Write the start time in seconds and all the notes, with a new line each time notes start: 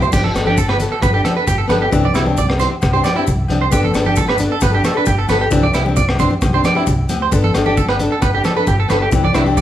0.02 C5, floor tom, maracas
0.11 G1 B3 D4 G4, muted steel-string acoustic guitar stroke, kick, crash, maracas
0.23 A4, high conga
0.34 G1 B3 D4, cross-stick, closed hi-hat, low agogo, maracas
0.38 A4
0.46 D4 G4 A4, high conga
0.57 A4, kick, maracas
0.68 B4, cross-stick, low agogo
0.79 B3 A4, muted steel-string acoustic guitar stroke, closed hi-hat, low conga, maracas
0.92 A4
1.02 G1 B4, kick, cross-stick, low agogo, maracas
1.13 D4 G4 A4
1.25 A4, cross-stick, closed hi-hat, high conga, low agogo, maracas
1.35 D4 A4 B4
1.47 G1 G4, kick, maracas
1.58 A4
1.68 G1 B3 D4 A4 B4, cross-stick, closed hi-hat, high conga, low conga, low agogo, maracas
1.82 G4
1.91 C2 E3 C4 D4 G4, kick, maracas
2.04 D5, high conga
2.14 C2 E3 C4 E4 G4, cross-stick, closed hi-hat, low agogo, maracas
2.25 C4 D4 G4, high conga
2.37 D5, kick, maracas
2.49 cross-stick, low agogo
2.59 E3 C4 D4 G4 C5, closed hi-hat, low conga, maracas
2.82 C2, kick, cross-stick, low agogo, maracas
2.93 C4 D4 G4 C5
3.04 D5, cross-stick, closed hi-hat, high conga, low agogo, maracas
3.15 C4 D4 E4 G4
3.27 C2, kick, maracas
3.48 C2 E3 C4 D4, closed hi-hat, high conga, low conga, low agogo
3.52 G4
3.61 C5
3.71 G1 B3 D4 G4 A4, kick, maracas
3.83 A4, high conga
3.93 G1 B3 D4 A4, cross-stick, closed hi-hat, low agogo, maracas
4.05 D4 G4 A4, high conga
4.16 A4, kick, maracas
4.28 B4, cross-stick, low agogo
4.37 B3 D4 A4, closed hi-hat, low conga, maracas
4.52 A4
4.61 G1 B4, kick, cross-stick, low agogo, maracas
4.71 D4 G4 A4
4.84 A4, cross-stick, closed hi-hat, high conga, low agogo, maracas
4.94 D4 A4 B4
5.06 G1 G4, kick, maracas
5.18 A4
5.28 G1 B3 D4 A4 B4, cross-stick, closed hi-hat, high conga, low conga, low agogo, maracas
5.41 G4
5.51 C2 E3 C4 D4 G4, kick, maracas
5.63 D5, high conga
5.73 C2 E3 C4 E4 G4, muted steel-string acoustic guitar stroke, cross-stick, closed hi-hat, low agogo, maracas
5.85 C4 D4 G4, high conga
5.96 D5, kick, maracas
6.09 cross-stick, low agogo
6.18 E3 C4 D4 G4 C5, kick, closed hi-hat, low conga, maracas
6.31 high conga
6.41 C2, kick, cross-stick, low agogo, maracas
6.53 C4 D4 G4 C5, low conga
6.64 D5, cross-stick, closed hi-hat, high conga, low agogo, maracas
6.75 C4 D4 E4 G4
6.87 C2, kick, maracas
7.08 D2 E3 C4 G4, muted steel-string acoustic guitar stroke, closed hi-hat, high conga, low conga, low agogo, maracas
7.22 C5
7.31 G1 B3 D4 A4, muted clean electric guitar stroke, kick, maracas
7.44 A4, high conga
7.54 G1 B3 D4, cross-stick, closed hi-hat, low agogo, maracas
7.58 A4
7.66 D4 G4 A4, high conga
7.77 A4, kick, maracas
7.89 B4, cross-stick, low agogo
7.99 D4 A4, muted steel-string acoustic guitar stroke, closed hi-hat, low conga, maracas
8.12 A4
8.22 G1 B4, kick, cross-stick, low agogo, maracas
8.34 D4 G4 A4
8.44 A4, cross-stick, closed hi-hat, high conga, low agogo, maracas
8.56 D4 A4 B4
8.67 G1 G4, kick, maracas
8.80 A4
8.88 G1 B3 D4 A4 B4, cross-stick, closed hi-hat, high conga, low conga, low agogo, maracas
9.02 G4
9.12 C2 E3 C4 D4 G4, kick, maracas
9.24 D5, high conga
9.33 C2 E3 C4 D4 E4, cross-stick, closed hi-hat, low agogo, maracas
9.37 muted steel-string acoustic guitar stroke
9.46 C4 D4 G4, high conga
9.57 D5, kick, maracas